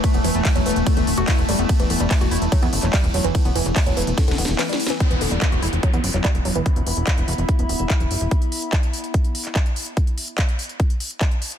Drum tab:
RD |x-----------------------x-----------------------x-----------------------x-----------------------|x-----------------------x-----------------------x-----------------------x-----------------------|x-----------------------x-----------------------x-----------------------x-----------------------|------------------------------------------------------------------------------------------------|
HH |x-----x-----o-----x-----x-----x-----o--x--x-----x-----x-----o-----x-----x-----x-----o-----x-----|x-----x-----o-----x-----x-----x-----o--x--x-----x-----x-----o-----x-----x-----x-----o-----x-----|x-----x-----o-----x-----x-----x-----o--x--x-----x-----x-----o-----x-----x-----x-----o-----x-----|x-----x-----o-----x-----x-----x-----o--x--x-----x-----x-----o-----x-----x-----x-----o-----x-----|
CP |------------------------x-----------------------------------------------x-----------------------|------------------------x-----------------------------------------x-----x-----------------------|------------------------x-----------------------------------------------x-----------------------|------------------------x-----------------------------------------x-----x-----------------------|
SD |------------------------------------------------------------------------------------------------|------------------------------------------------------------------------------------------------|------------------------------------------------o-------o-------o-------o-------o-------o-------|------------------------------------------------------------------------------------------------|
BD |o-----------------------o-----------------------o-----------------------o-----------------------|o-----------------------o-----------------------o-----------------------o-----------------------|o-----------------------o-----------------------o-----------------------------------------------|o-----------------------o-----------------------o-----------------------o-----------------------|

RD |------------------------------------------------------------------------------------------------|------------------------------------------------------------------------------------------------|------------------------------------------------------------------------------------------------|
HH |x-----x-----o-----x-----x-----x-----o--x--x-----x-----x-----o-----x-----x-----x-----o-----x-----|x-----x-----o-----x-----x-----x-----o--x--x-----x-----x-----o-----x-----x-----x-----o-----x-----|x-----x-----o-----x-----x-----x-----o--x--x-----x-----x-----o-----x-----x-----x-----o-----x-----|
CP |------------------------x-----------------------------------------------x-----------------------|------------------------x-----------------------------------------x-----x-----------------------|------------------------x-----------------------------------------------x-----------------------|
SD |------------------------------------------------------------------------------------------------|------------------------------------------------------------------------------------------------|------------------------------------------------------------------------------------------------|
BD |o-----------------------o-----------------------o-----------------------o-----------------------|o-----------------------o-----------------------o-----------------------o-----------------------|o-----------------------o-----------------------o-----------------------o-----------------------|